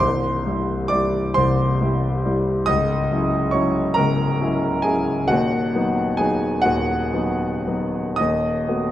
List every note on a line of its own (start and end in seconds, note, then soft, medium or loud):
0.00 0.42 C1 medium
0.00 0.45 C2 medium
0.00 0.87 C5 medium
0.00 0.90 C6 loud
0.46 0.88 G3 medium
0.46 0.88 E4 medium
0.46 0.88 G4 medium
0.88 1.33 G3 medium
0.88 1.33 E4 medium
0.88 1.32 D5 medium
0.88 1.35 D6 loud
0.93 1.33 G4 medium
1.34 1.80 C1 medium
1.34 1.80 C2 medium
1.34 2.64 C5 medium
1.34 2.68 C6 loud
1.82 2.22 G3 medium
1.82 2.22 E4 medium
1.82 2.22 G4 medium
2.25 2.65 G3 medium
2.25 2.65 E4 medium
2.25 2.66 G4 medium
2.66 3.11 C#1 medium
2.66 3.11 C#2 medium
2.66 3.50 D#5 medium
2.66 3.54 D#6 loud
3.12 3.51 F#3 medium
3.12 3.51 C#4 medium
3.12 3.51 E4 medium
3.51 3.94 F#3 medium
3.51 3.94 C#4 medium
3.51 3.94 E4 medium
3.51 3.94 C#5 medium
3.51 3.96 C#6 medium
3.94 4.40 C#1 medium
3.94 4.40 C#2 medium
3.94 4.81 A#4 medium
3.94 4.84 A#5 loud
4.41 4.82 F#3 medium
4.41 4.82 C#4 medium
4.41 4.82 E4 medium
4.82 5.26 G#4 medium
4.82 5.29 G#5 medium
4.87 5.27 F#3 medium
4.87 5.27 C#4 medium
4.87 5.27 E4 medium
5.27 5.72 D#1 medium
5.27 5.74 D#2 medium
5.27 6.14 F#4 medium
5.27 6.18 F#5 loud
5.75 6.15 F#3 medium
5.75 6.15 B3 medium
5.75 6.16 D#4 medium
6.17 6.60 F#3 medium
6.17 6.60 B3 medium
6.17 6.60 G#4 medium
6.17 6.63 G#5 loud
6.21 6.61 D#4 medium
6.62 7.11 D#2 medium
6.62 8.14 F#4 medium
6.62 8.17 F#5 loud
6.66 7.12 D#1 medium
7.13 7.62 F#3 medium
7.13 7.62 B3 medium
7.13 7.62 D#4 medium
7.67 8.15 F#3 medium
7.67 8.15 B3 medium
7.67 8.15 D#4 medium
8.16 8.92 D#5 medium
8.16 8.92 D#6 loud
8.20 8.67 D#1 medium
8.20 8.68 D#2 medium
8.68 8.92 A3 medium
8.68 8.92 B3 medium
8.68 8.92 F#4 medium